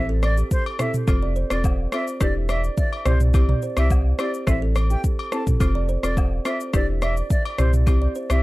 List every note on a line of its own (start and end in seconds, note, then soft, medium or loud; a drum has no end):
0.00 0.43 A1 loud
0.00 0.73 C4 medium
0.00 0.73 E4 medium
0.00 0.73 A4 medium
0.00 0.73 C5 loud
0.00 downlifter medium
0.09 0.19 A4 medium
0.23 0.36 D5 medium
0.23 cross-stick medium
0.23 high agogo medium
0.23 shaker medium
0.37 0.47 G4 medium
0.37 shaker medium
0.51 0.64 C5 medium
0.51 kick medium
0.51 shaker medium
0.66 high agogo medium
0.79 1.01 C4 medium
0.79 1.01 E4 medium
0.79 0.90 A4 medium
0.79 1.01 A4 medium
0.79 1.01 C5 medium
0.79 0.92 E5 medium
0.79 cross-stick loud
0.79 mid tom medium
0.79 shaker medium
0.94 mid tom medium
0.94 shaker medium
1.07 1.44 F1 loud
1.07 1.29 C4 medium
1.07 1.29 F4 medium
1.07 1.29 A4 medium
1.07 1.29 C5 loud
1.07 kick loud
1.07 high agogo medium
1.07 shaker medium
1.23 1.32 D5 medium
1.36 1.47 C5 medium
1.36 shaker soft
1.50 1.87 E1 medium
1.50 1.89 C4 medium
1.50 1.89 F4 medium
1.50 1.89 A4 medium
1.50 1.89 C5 medium
1.50 1.63 D5 medium
1.50 cross-stick medium
1.50 high agogo medium
1.50 shaker medium
1.64 kick medium
1.64 low woodblock medium
1.64 shaker medium
1.92 2.19 C4 medium
1.92 2.19 F4 medium
1.92 2.19 A4 medium
1.92 2.03 C5 medium
1.92 2.19 C5 medium
1.92 2.05 E5 medium
1.92 cross-stick medium
1.92 high agogo medium
1.92 shaker medium
2.07 shaker medium
2.21 2.69 E1 loud
2.21 2.99 D4 medium
2.21 2.99 E4 medium
2.21 2.99 G4 medium
2.21 3.00 B4 loud
2.21 2.34 D5 medium
2.21 kick loud
2.21 cross-stick medium
2.21 shaker medium
2.49 2.60 D5 medium
2.49 2.62 E5 medium
2.49 cross-stick medium
2.49 high agogo medium
2.49 shaker soft
2.64 shaker medium
2.77 2.90 D5 medium
2.77 2.88 E5 medium
2.77 kick medium
2.77 shaker medium
2.93 high agogo medium
3.06 3.54 C2 loud
3.06 3.27 C4 medium
3.06 3.27 E4 medium
3.06 3.27 G4 medium
3.06 3.27 C5 medium
3.06 3.19 C5 medium
3.06 3.17 D5 medium
3.06 cross-stick loud
3.06 mid tom medium
3.06 shaker medium
3.20 mid tom medium
3.20 shaker medium
3.34 3.56 C4 medium
3.34 3.56 E4 medium
3.34 3.56 G4 medium
3.34 3.56 C5 loud
3.34 kick loud
3.34 high agogo medium
3.34 shaker medium
3.49 3.59 D5 medium
3.49 mid tom medium
3.62 3.73 C5 medium
3.62 shaker soft
3.77 4.13 C2 medium
3.77 4.16 C4 medium
3.77 4.16 E4 medium
3.77 4.16 G4 medium
3.77 4.16 C5 medium
3.77 3.89 E5 medium
3.77 cross-stick medium
3.77 high agogo medium
3.77 shaker medium
3.90 kick loud
3.90 low woodblock medium
3.90 shaker medium
4.19 4.45 C4 medium
4.19 4.45 E4 medium
4.19 4.45 G4 medium
4.19 4.30 C5 medium
4.19 4.45 C5 medium
4.19 4.32 D5 medium
4.19 cross-stick medium
4.19 high agogo medium
4.19 shaker medium
4.34 shaker medium
4.47 4.96 A1 loud
4.47 5.26 C4 medium
4.47 5.26 E4 medium
4.47 5.26 A4 medium
4.47 5.26 C5 loud
4.47 4.60 E5 medium
4.47 kick loud
4.47 cross-stick medium
4.47 shaker medium
4.62 4.72 A4 medium
4.75 cross-stick medium
4.75 high agogo medium
4.75 shaker soft
4.90 5.00 G4 medium
4.90 5.02 G5 medium
4.90 shaker medium
5.04 kick medium
5.04 shaker medium
5.19 high agogo medium
5.32 5.54 C4 medium
5.32 5.54 E4 medium
5.32 5.43 A4 medium
5.32 5.54 A4 medium
5.32 5.54 C5 medium
5.32 5.45 A5 medium
5.32 cross-stick medium
5.32 shaker medium
5.47 kick medium
5.47 mid tom medium
5.47 shaker medium
5.60 5.97 F1 loud
5.60 5.82 C4 medium
5.60 5.82 F4 medium
5.60 5.82 A4 medium
5.60 5.82 C5 loud
5.60 kick loud
5.60 high agogo medium
5.60 shaker medium
5.75 5.85 D5 medium
5.89 5.99 C5 medium
5.89 shaker soft
6.03 6.39 E1 medium
6.03 6.42 C4 medium
6.03 6.42 F4 medium
6.03 6.42 A4 medium
6.03 6.42 C5 medium
6.03 6.15 D5 medium
6.03 cross-stick medium
6.03 high agogo medium
6.03 shaker medium
6.17 kick medium
6.17 low woodblock medium
6.17 shaker medium
6.45 6.71 C4 medium
6.45 6.72 F4 medium
6.45 6.72 A4 medium
6.45 6.56 C5 medium
6.45 6.72 C5 medium
6.45 6.58 E5 medium
6.45 cross-stick medium
6.45 high agogo medium
6.45 shaker medium
6.60 shaker medium
6.73 7.22 E1 loud
6.73 7.52 D4 medium
6.73 7.52 E4 medium
6.73 7.52 G4 medium
6.73 7.52 B4 loud
6.73 6.87 D5 medium
6.73 kick loud
6.73 cross-stick medium
6.73 shaker medium
7.02 7.13 D5 medium
7.02 7.15 E5 medium
7.02 cross-stick medium
7.02 high agogo medium
7.02 shaker soft
7.17 shaker medium
7.30 7.43 D5 medium
7.30 7.41 E5 medium
7.30 kick loud
7.30 shaker medium
7.45 high agogo medium
7.58 8.07 C2 loud
7.58 7.80 C4 medium
7.58 7.80 E4 medium
7.58 7.80 G4 medium
7.58 7.71 C5 medium
7.58 7.80 C5 medium
7.58 7.69 D5 medium
7.58 cross-stick medium
7.58 mid tom medium
7.58 shaker medium
7.73 mid tom medium
7.73 shaker medium
7.87 8.08 C4 medium
7.87 8.08 E4 medium
7.87 8.09 G4 medium
7.87 8.09 C5 loud
7.87 kick loud
7.87 high agogo medium
7.87 shaker medium
8.02 8.15 D5 medium
8.15 8.26 C5 medium
8.15 shaker soft
8.30 8.43 C2 medium
8.30 8.43 C4 medium
8.30 8.43 E4 medium
8.30 8.43 G4 medium
8.30 8.43 C5 medium
8.30 8.42 E5 medium
8.30 cross-stick medium
8.30 high agogo medium
8.30 shaker medium